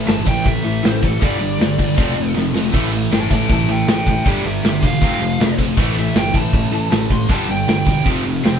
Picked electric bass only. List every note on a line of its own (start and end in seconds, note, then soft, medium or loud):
0.08 0.23 G1 medium
0.27 0.42 A1 medium
0.46 0.61 A1 medium
0.65 0.80 A1 medium
0.84 1.15 A1 loud
1.22 1.38 G1 medium
1.41 1.57 G1 medium
1.61 1.76 G1 medium
1.79 1.95 G1 medium
1.98 2.14 F1 medium
2.18 2.33 F1 medium
2.36 2.52 F1 loud
2.55 2.71 F1 medium
2.74 3.05 A1 medium
3.11 3.27 G1 medium
3.31 3.47 A1 medium
3.50 3.66 A1 medium
3.68 3.84 A1 medium
3.87 4.19 A1 medium
4.26 4.42 G1 medium
4.44 4.60 G1 medium
4.64 4.80 G1 medium
4.83 4.99 E1 medium
5.02 5.18 F1 medium
5.20 5.36 F1 medium
5.40 5.55 F1 medium
5.59 5.75 F1 medium
5.77 6.09 A1 medium
6.16 6.32 G1 medium
6.34 6.50 A1 medium
6.53 6.69 A1 loud
6.72 6.88 A1 medium
6.92 7.23 A1 medium
7.30 7.46 G1 loud
7.49 7.65 G1 medium
7.68 7.84 G1 medium
7.87 8.03 E1 medium
8.06 8.22 F1 medium
8.24 8.40 F1 medium
8.44 8.60 F1 loud